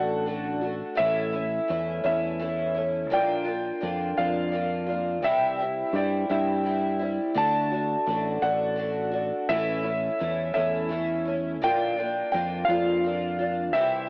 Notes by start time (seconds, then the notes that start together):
Already playing: A1 D3 A3 D4 F#4 F#5
0.26 D3 A3 D4 F#4
0.61 A3 D4 F#4
0.95 A2 E3 A3 C#4 E4 E5
1.00 A1
1.32 A3 C#4 E4
1.68 E2 E3 A3 C#4 E4
2.04 E2 A2 E3 A3 C#4 E4 E5
2.40 E3 A3 C#4 E4
2.75 A3 C#4 E4
3.10 A#1 A#2 D3 A#3 D4 F4 G5
3.44 A#3 D4 F4
3.81 F2 D3 A#3 D4 F4
4.17 F2 A#2 D3 A#3 D4 F4 F5
4.52 D3 A#3 D4 F4
4.87 A#3 D4 F4
5.22 C2 C3 E3 G3 C4 E4 E5
5.59 G3 C4 E4
5.93 G2 E3 G3 C4 E4 D5
6.29 G2 C3 E3 G3 C4 E4 E5
6.64 E3 G3 C4 E4
6.99 G3 C4 E4
7.34 D2 D3 A3 D4 F#4 A5
7.71 A3 D4 F#4
8.06 A1 D3 A3 D4
8.10 F#4
8.42 A1 D3 A3 D4 F#4 F#5
8.76 D3 A3 D4 F#4
9.11 A3 D4 F#4
9.49 A1 A2 E3 A3 C#4 E4 E5
9.83 A3 C#4 E4
10.19 E2 E3 A3 C#4 E4
10.54 E2 A2 E3 A3 C#4 E4 E5
10.89 E3 A3 C#4 E4
11.25 A3 C#4 E4
11.62 A#1 A#2 D3 A#3 D4 F4 G5
11.97 A#3 D4 F4
12.32 F2 D3 A#3 D4 F4 G5
12.65 F2 F5
12.69 A#2 D3 A#3 D4 F4
13.04 D3 A#3 D4 F4
13.39 A#3 D4 F4
13.73 C2 C3 E3 G3 C4 E4 E5